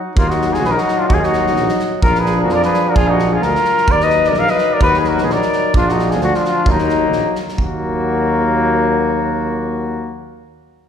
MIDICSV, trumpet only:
0, 0, Header, 1, 2, 480
1, 0, Start_track
1, 0, Key_signature, -6, "minor"
1, 0, Tempo, 464396
1, 163, Time_signature, 2, 2, 24, 8
1, 5923, Tempo, 459418
1, 11311, End_track
2, 0, Start_track
2, 0, Title_t, "Trumpet"
2, 0, Program_c, 0, 56
2, 175, Note_on_c, 0, 58, 81
2, 294, Note_on_c, 0, 63, 67
2, 309, Note_off_c, 0, 58, 0
2, 484, Note_on_c, 0, 66, 57
2, 499, Note_off_c, 0, 63, 0
2, 533, Note_on_c, 0, 65, 66
2, 549, Note_off_c, 0, 66, 0
2, 615, Note_on_c, 0, 66, 81
2, 630, Note_off_c, 0, 65, 0
2, 649, Note_on_c, 0, 68, 67
2, 664, Note_off_c, 0, 66, 0
2, 720, Note_on_c, 0, 66, 80
2, 736, Note_off_c, 0, 68, 0
2, 765, Note_on_c, 0, 63, 72
2, 780, Note_off_c, 0, 66, 0
2, 1001, Note_on_c, 0, 62, 72
2, 1017, Note_off_c, 0, 63, 0
2, 1115, Note_off_c, 0, 62, 0
2, 1121, Note_on_c, 0, 63, 75
2, 1178, Note_on_c, 0, 65, 65
2, 1194, Note_off_c, 0, 63, 0
2, 1252, Note_on_c, 0, 63, 74
2, 1268, Note_off_c, 0, 65, 0
2, 1840, Note_off_c, 0, 63, 0
2, 2105, Note_on_c, 0, 65, 83
2, 2275, Note_on_c, 0, 68, 73
2, 2290, Note_off_c, 0, 65, 0
2, 2489, Note_off_c, 0, 68, 0
2, 2522, Note_on_c, 0, 66, 79
2, 2598, Note_on_c, 0, 70, 76
2, 2613, Note_off_c, 0, 66, 0
2, 2718, Note_off_c, 0, 70, 0
2, 2743, Note_on_c, 0, 68, 66
2, 2976, Note_on_c, 0, 66, 73
2, 2991, Note_off_c, 0, 68, 0
2, 3053, Note_on_c, 0, 65, 96
2, 3069, Note_off_c, 0, 66, 0
2, 3183, Note_on_c, 0, 63, 77
2, 3198, Note_off_c, 0, 65, 0
2, 3441, Note_on_c, 0, 65, 73
2, 3456, Note_off_c, 0, 63, 0
2, 3561, Note_off_c, 0, 65, 0
2, 3561, Note_on_c, 0, 65, 76
2, 4032, Note_on_c, 0, 70, 84
2, 4047, Note_off_c, 0, 65, 0
2, 4179, Note_on_c, 0, 71, 76
2, 4195, Note_off_c, 0, 70, 0
2, 4441, Note_on_c, 0, 70, 79
2, 4457, Note_off_c, 0, 71, 0
2, 4517, Note_off_c, 0, 70, 0
2, 4517, Note_on_c, 0, 70, 86
2, 4658, Note_on_c, 0, 71, 84
2, 4674, Note_off_c, 0, 70, 0
2, 4901, Note_on_c, 0, 70, 79
2, 4916, Note_off_c, 0, 71, 0
2, 4987, Note_off_c, 0, 70, 0
2, 5024, Note_on_c, 0, 66, 96
2, 5145, Note_on_c, 0, 68, 63
2, 5159, Note_off_c, 0, 66, 0
2, 5253, Note_on_c, 0, 66, 88
2, 5268, Note_off_c, 0, 68, 0
2, 5417, Note_on_c, 0, 68, 74
2, 5432, Note_off_c, 0, 66, 0
2, 5501, Note_on_c, 0, 70, 86
2, 5516, Note_off_c, 0, 68, 0
2, 5951, Note_off_c, 0, 70, 0
2, 5965, Note_on_c, 0, 62, 86
2, 6118, Note_on_c, 0, 63, 72
2, 6134, Note_off_c, 0, 62, 0
2, 6362, Note_on_c, 0, 65, 67
2, 6378, Note_off_c, 0, 63, 0
2, 6437, Note_off_c, 0, 65, 0
2, 6447, Note_on_c, 0, 62, 69
2, 6568, Note_off_c, 0, 62, 0
2, 6568, Note_on_c, 0, 62, 70
2, 6661, Note_off_c, 0, 62, 0
2, 6702, Note_on_c, 0, 62, 69
2, 6901, Note_on_c, 0, 58, 78
2, 6917, Note_off_c, 0, 62, 0
2, 7617, Note_off_c, 0, 58, 0
2, 7875, Note_on_c, 0, 66, 74
2, 10576, Note_off_c, 0, 66, 0
2, 11311, End_track
0, 0, End_of_file